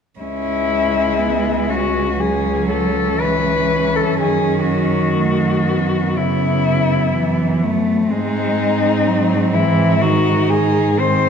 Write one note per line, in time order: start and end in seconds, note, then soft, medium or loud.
0.20 4.16 C#2 soft
0.20 2.15 G#3 soft
0.20 1.21 C#4 soft
0.20 1.71 E4 medium
1.19 1.70 B3 soft
1.69 2.19 C#4 soft
1.69 2.21 F#4 medium
2.19 3.18 F#3 soft
2.19 5.14 C#4 soft
2.19 2.70 G#4 soft
2.70 3.22 A4 medium
3.19 4.21 E3 soft
3.19 3.97 B4 medium
3.95 4.19 A4 soft
4.19 8.12 F#2 soft
4.19 6.18 D#3 soft
4.19 4.68 G#4 soft
4.69 6.17 F#4 medium
5.19 5.70 A3 soft
5.68 8.10 B3 soft
6.16 7.13 C#3 soft
6.16 7.63 E4 soft
7.14 7.65 E3 soft
7.63 8.12 A3 soft
8.10 11.29 G#2 soft
8.10 9.08 G#3 soft
8.10 10.04 C4 soft
8.10 9.54 D#4 medium
9.07 9.55 F#3 soft
9.53 10.01 E3 soft
9.53 10.03 E4 medium
10.01 10.97 D#3 soft
10.01 11.00 D#4 soft
10.01 10.51 F#4 medium
10.49 11.01 G#4 medium
10.98 11.29 D#3 soft
10.98 11.29 C4 soft
10.98 11.29 C5 medium